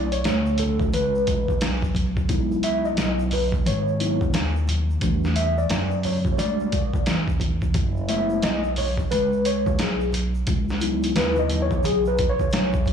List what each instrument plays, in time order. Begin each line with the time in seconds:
Already playing: upright bass B1, tine electric piano D5
0.12 tine electric piano C#5, closed hi-hat, shaker
0.24 upright bass D2, snare, closed hi-hat, shaker
0.46 shaker
0.58 tine electric piano A4, closed hi-hat, high conga, low conga, shaker
0.80 kick, high conga, shaker
0.93 upright bass C#2, tine electric piano B4, closed hi-hat, shaker
1.15 shaker
1.27 kick, closed hi-hat, shaker
1.48 muted upright bass stroke, kick, high conga, shaker
1.61 upright bass B1, snare, closed hi-hat, shaker
1.82 kick, shaker
1.95 kick, closed hi-hat, low conga, shaker
2.17 kick, shaker
2.29 upright bass C#2, tine electric piano F#3 B3 D#4 E4, kick, closed hi-hat, shaker
2.51 shaker
2.63 tine electric piano E5, closed hi-hat, shaker
2.85 tine electric piano D#5, shaker
2.97 upright bass B1, snare, closed hi-hat, shaker
3.19 shaker
3.31 tine electric piano B4, open hi-hat, high conga, low conga, shaker
3.52 kick, high conga, shaker
3.66 upright bass G#1, tine electric piano C#5, closed hi-hat, shaker
3.88 shaker
4.00 tine electric piano F#3 B3 D#4 E4, closed hi-hat, shaker
4.21 kick, high conga, shaker
4.33 upright bass D#2, snare, closed hi-hat, shaker
4.56 shaker
4.68 closed hi-hat, low conga, shaker
4.90 shaker
5.01 upright bass E2, tine electric piano G3 A3 D4 F#4, kick, closed hi-hat, shaker
5.24 snare, shaker
5.36 tine electric piano E5, closed hi-hat, shaker
5.58 tine electric piano D5, shaker
5.70 upright bass F#2, snare, closed hi-hat, shaker
5.91 shaker
6.03 tine electric piano C#5, open hi-hat, high conga, low conga, shaker
6.25 kick, high conga, shaker
6.33 tine electric piano C#5
6.37 upright bass C#2, tine electric piano G3 A3 D4 F#4 D5, closed hi-hat, shaker
6.60 shaker
6.72 kick, closed hi-hat, shaker
6.94 muted upright bass stroke, kick, high conga, shaker
7.06 upright bass E2, snare, closed hi-hat, shaker
7.28 kick, shaker
7.40 kick, closed hi-hat, low conga, shaker
7.62 kick, shaker
7.74 upright bass F#1, kick, closed hi-hat, shaker
7.96 shaker
8.08 tine electric piano G#3 A3 B3 E4 E5, closed hi-hat, shaker
8.30 shaker
8.42 upright bass B1, tine electric piano D#5, snare, closed hi-hat, shaker
8.64 shaker
8.76 tine electric piano C#5, open hi-hat, high conga, low conga, shaker
8.98 kick, high conga, shaker
9.11 upright bass C#2, tine electric piano B4, closed hi-hat, shaker
9.33 shaker
9.45 tine electric piano C#5, closed hi-hat, shaker
9.66 kick, high conga, shaker
9.79 upright bass B1, tine electric piano G#4, snare, closed hi-hat, shaker
10.01 shaker
10.12 closed hi-hat, low conga, shaker
10.35 shaker
10.47 upright bass C#2, kick, closed hi-hat, shaker
10.69 snare, shaker
10.80 tine electric piano F#3 B3 D#4 E4, closed hi-hat, shaker
11.03 closed hi-hat, shaker
11.16 upright bass D#2, tine electric piano B4, snare, closed hi-hat, high conga, shaker
11.36 tine electric piano D#5, high conga, shaker
11.50 closed hi-hat, high conga, low conga, shaker
11.62 tine electric piano C#5
11.71 kick, high conga, shaker
11.83 upright bass B1, tine electric piano G#4, closed hi-hat, shaker
12.05 tine electric piano B4, shaker
12.18 kick, closed hi-hat, shaker
12.30 tine electric piano C#5
12.39 muted upright bass stroke, kick, high conga, shaker
12.51 upright bass B1, snare, closed hi-hat, shaker
12.73 kick, shaker
12.85 kick, closed hi-hat, low conga, shaker